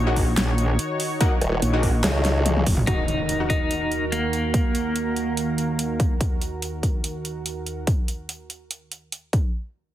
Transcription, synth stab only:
0.07 A#3 D#4 F#4
1.21 A#3 D#4 F#4
1.73 A#3 D#4 F#4
2.87 A#3 D#4 F#4
3.40 A#3 D#4 F#4

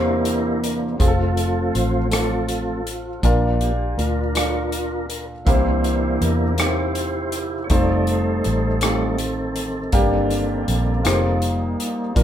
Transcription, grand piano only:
Already playing: C3 A#3 C4 E4 G4 C5
0.99 C4 F4 G#4
1.08 A4
2.11 C4 F4 A4
3.23 A#2 D4 F4 A#4
4.34 D4 F4 A4
5.46 C3 A#3 C4 E4 G4 C5
6.58 A#3 C4 D#4 G4 A#4
6.65 E4
7.70 A3 C4 D#4 F4 C5
8.82 A3 C4 D#4 F4 G4
9.93 G2 A#3 D4 G4
11.03 A#3 D#4 F4 G4 C5
12.15 A#2 D4 F4 A#4

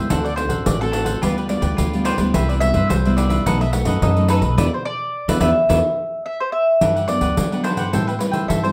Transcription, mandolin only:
Already playing: C5
0.25 D5
0.36 C5
0.66 D5
0.81 A4
1.23 B4
1.50 D5
2.05 C5
2.34 E5
2.49 D5
2.60 E5
2.89 C5
3.17 D5
3.46 F#5
3.61 E5
3.73 F#5
4.03 D#5
4.30 B4
4.58 D5
4.74 C5
4.85 D5
5.41 E5
6.26 E5
6.40 C5
6.52 E5
7.08 D5
7.64 C5
8.07 B4
8.19 B4
8.48 E5
8.64 C5

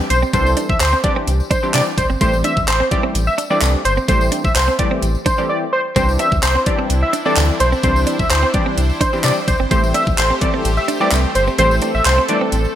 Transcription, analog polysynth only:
0.33 E3 G3 C4 D4 A4
1.03 E3 G3 C4 D4 G4
1.63 E3 G3 C4 D4 G4
2.21 E3 G3 A3 C4 G4
2.91 E3 G3 A3 C4 G4
3.50 E3 G3 A3 C4 D4
4.08 E3 G3 A3 C4 G4
4.79 E3 G3 A3 C4 G4
5.38 E3 G3 A3 C4 G4
5.96 E3 G3 C4 D4 G4
6.66 E3 G3 C4 D4 G4
7.26 E3 G3 C4 D4 A4
7.83 E3 G3 C4 D4 G4
8.54 E3 G3 C4 D4 G4
9.13 E3 G3 C4 D4 G4
9.71 E3 G3 A3 C4 G4
10.41 E3 G3 A3 C4 A4
11.00 E3 G3 A3 C4 G4
11.58 E3 G3 A3 C4 G4
12.29 E3 G3 A3 C4 D4

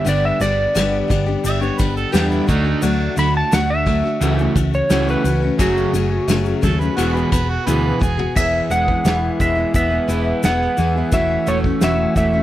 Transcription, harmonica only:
1.46 E5
1.61 C#5
1.78 B4
1.97 A4
2.13 G4
2.29 E4
2.48 D#4
2.83 D4
6.64 A4
6.80 B4
6.96 F#4
7.15 B4
7.32 B4
7.49 F#4
7.66 B4
8.02 G#4

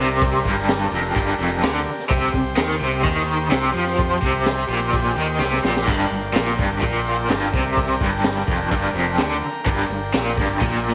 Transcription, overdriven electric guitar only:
Already playing: C3
0.45 G2
0.92 F2
1.15 G2
1.39 F2
1.62 D3
1.87 muted overdriven electric guitar stroke
2.09 C3
2.33 C3
2.57 D#3
2.80 C3
3.03 D#3
3.50 C3
3.73 F3
4.21 C3
4.68 A#2
5.17 D#3
5.40 C3
5.63 A#2
5.87 G2
6.11 G2
6.33 A#2
6.56 G2
6.80 A#2
7.29 G2
7.53 C3
8.01 G2
8.48 F2
8.72 G2
8.95 F2
9.20 D3
9.43 muted overdriven electric guitar stroke
9.66 G2
9.90 G2
10.13 A#2
10.37 G2
10.61 A#2

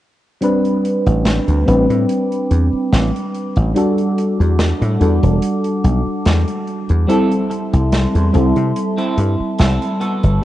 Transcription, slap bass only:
1.06 A1
1.48 D2
1.68 A1
1.90 A2
2.51 E2
2.73 muted slap bass stroke
2.92 A1
3.56 A1
4.40 E2
4.81 A2
5.01 E2
5.23 E1
5.84 B1
6.06 muted slap bass stroke
6.26 E2
6.90 E2
7.73 C2
8.15 E2
8.35 C2
8.56 C3
9.18 G2
9.40 muted slap bass stroke
9.60 C2
10.23 G1

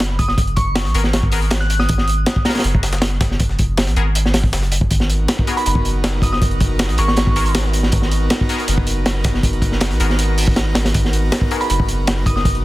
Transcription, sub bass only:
Already playing: F#1
0.85 A#1
0.94 G#1
1.89 G#1
2.64 F#1
3.87 A#1
3.96 G#1
4.53 F#1
4.91 G#1
5.66 F#1
6.89 A#1
6.99 G#1
7.93 G#1
8.68 F#1
9.91 A#1
10.00 G#1
10.95 G#1
11.70 F#1

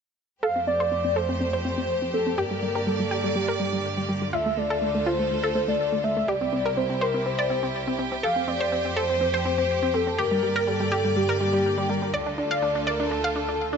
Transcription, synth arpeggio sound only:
0.43 A4
0.56 C4
0.67 C4
0.80 C5
0.92 C4
1.05 C4
1.16 A4
1.29 C4
1.40 C4
1.53 C5
1.65 C4
1.78 C4
2.02 C4
2.14 C4
2.27 C4
2.38 G4
2.51 G3
2.63 G3
2.75 A#4
2.87 G3
3.00 G3
3.11 G4
3.24 G3
3.36 G3
3.48 A#4
3.60 G3
3.73 G3
3.97 G3
4.09 G3
4.22 G3
4.33 F4
4.46 A3
4.57 A3
4.70 A4
4.82 A3
4.95 A3
5.06 F4
5.19 A3
5.31 A3
5.43 A4
5.55 A3
5.68 A3
5.92 A3
6.04 A3
6.17 A3
6.28 G4
6.41 C4
6.53 C4
6.66 A#4
6.77 C4
6.90 C4
7.01 C5
7.14 C4
7.26 C4
7.39 D5
7.50 C4
7.63 C4
7.87 C4
7.99 C4
8.12 C4
8.23 A4
8.36 C4
8.48 C4
8.61 C5
8.72 C4
8.85 C4
8.96 A4
9.09 C4
9.21 C4
9.34 C5
9.45 C4
9.58 C4
9.83 C4
9.94 C4
10.07 C4
10.18 G4
10.31 G3
10.43 G3
10.56 A#4
10.67 G3
10.80 G3
10.92 G4
11.05 G3
11.16 G3
11.29 A#4
11.40 G3
11.53 G3
11.78 G3
11.89 G3
12.02 G3
12.14 D5
12.26 D4
12.38 D4
12.51 F5
12.62 D4
12.75 D4
12.87 D5
13.00 D4
13.11 D4
13.24 F5
13.36 D4
13.49 D4
13.73 D4

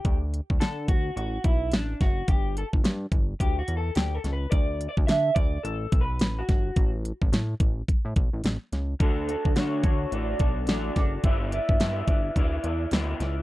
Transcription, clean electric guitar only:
Already playing: G4
0.60 A4
0.89 F#4
1.17 F#4
1.45 E4
1.73 D4
2.01 F#4
2.30 G4
2.58 A4
3.40 G4
3.59 F#4
3.77 A4
3.96 G4
4.14 A4
4.33 B4
4.51 D5
4.89 D5
5.07 E5
5.35 D5
5.63 A4
6.01 B4
6.39 F#4
9.00 D3 A3 D4 F#4 A4
9.27 D4 F#4 A4
9.56 D3 A3 D4 F#4 A4
9.83 D4 F#4 A4
10.11 A3 D4 F#4 A4
10.40 D4 F#4 A4
10.68 D3 A3 D4 F#4 A4
10.96 D4 F#4 A4
11.24 G3 B3 E4 B4 D5
11.52 E4 B4 D5
11.79 G3 B3 E4 B4 D5
12.08 E4 B4 D5
12.36 B3 E4 B4 D5
12.64 E4 B4 D5
12.92 G3 B3 E4 B4 D5
13.20 E4 B4 D5

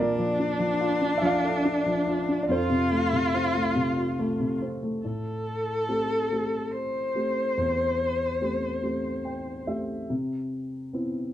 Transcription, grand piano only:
Already playing: A#2
0.00 A#4 D5
0.18 F3
0.40 D4
0.59 F3
0.81 F4
1.02 D4
1.18 E5
1.22 F3 D5 F5
1.44 A4
1.65 D4
1.86 F3
2.07 F4
2.29 D4
2.43 D5
2.49 F2 A4 C5
2.70 C3
2.91 A3
3.13 C3
3.34 C4
3.55 A3
3.76 C3
3.97 F4
4.19 A3
4.40 C3
4.62 C4
4.83 A3
5.04 A2
5.88 A3 C4 G4
6.31 A3 C4 G4
7.15 A3 C4 G4
7.57 E2
8.41 A3 C4 G4
8.82 A3 C4 G4
9.25 G5
9.67 A3 C4 G4 E5
10.10 C3
10.93 B3 C4 E4

